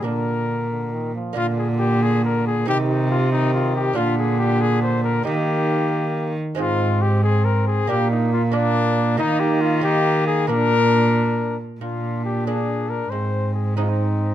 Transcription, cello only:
X:1
M:6/8
L:1/8
Q:3/8=92
K:Bbmix
V:1 name="Cello" clef=bass
B,,4- B,, z | B,,6 | C,6 | B,,6 |
E,4- E, z | A,,6 | B,,6 | E,6 |
B,,4- B,, z | B,,6 | A,,6 |]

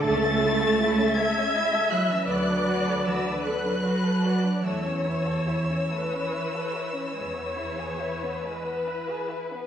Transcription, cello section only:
X:1
M:12/8
L:1/16
Q:3/8=49
K:A
V:1 name="Cello section" clef=bass
A,6 G,4 F, E, F,4 E,2 F,6 | E,16- E,6 z2 |]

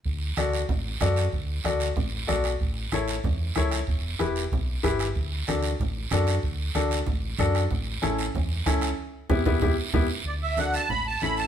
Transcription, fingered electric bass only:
X:1
M:4/4
L:1/8
Q:1/4=188
K:D
V:1 name="Fingered electric bass" clef=bass
D,,2 D,,2 A,,,2 F,,2 | D,,2 D,,2 A,,,2 B,,,2 | A,,,2 A,,,2 E,,2 C,,2 | E,,,2 E,,,2 B,,,2 G,,,2 |
D,,2 D,,2 A,,,2 F,,2 | D,,2 D,,2 A,,,2 F,,2 | A,,,2 A,,,2 E,,2 C,,2 | z2 E,, E,, E,, z E,, z |
D,,4 A,,,2 A,,,2 |]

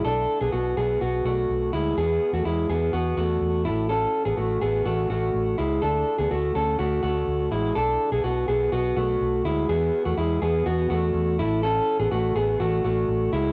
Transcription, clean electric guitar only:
X:1
M:4/4
L:1/16
Q:1/4=124
K:A
V:1 name="Clean electric guitar"
[DA]3 [B,G] [B,F]2 [B,G]2 [B,F]2 [A,F]4 [G,E]2 | [B,G]3 [A,F] [G,E]2 [B,G]2 [B,F]2 [A,F]4 [A,E]2 | [CA]3 [B,G] [A,F]2 [B,G]2 [A,F]2 [A,F]4 [G,E]2 | [DA]3 [B,G] [A,F]2 [CA]2 [A,F]2 [A,F]4 [G,E]2 |
[DA]3 [B,G] [B,F]2 [B,G]2 [B,F]2 [A,F]4 [G,E]2 | [B,G]3 [A,F] [G,E]2 [B,G]2 [B,F]2 [A,F]4 [A,E]2 | [CA]3 [B,G] [A,F]2 [B,G]2 [A,F]2 [A,F]4 [G,E]2 |]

